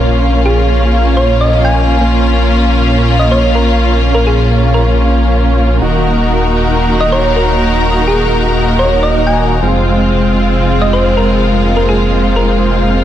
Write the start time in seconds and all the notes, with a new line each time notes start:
Already playing: A#1 A#3 C#4 F4 C#5 F5
0.46 G#4
1.17 C#5
1.41 D#5
1.65 G#5
2.00 A#3 C#4 F4 C#5 F5
3.19 D#5
3.31 C#5
3.55 A#4
4.14 A#4
4.27 G#4
4.74 A#4
5.81 D#1 D#3 A#3 D#4 F#4 A#4 D#5 F#5
7.01 D#5
7.12 C#5
7.36 A#4
8.08 G#4
8.79 C#5
9.03 D#5
9.27 G#5
9.62 F1 G#3 C4 F4 C5 F5
10.82 D#5
10.93 C5
11.17 A#4
11.53 A#3
11.77 A#4
11.89 G#4
12.36 A#4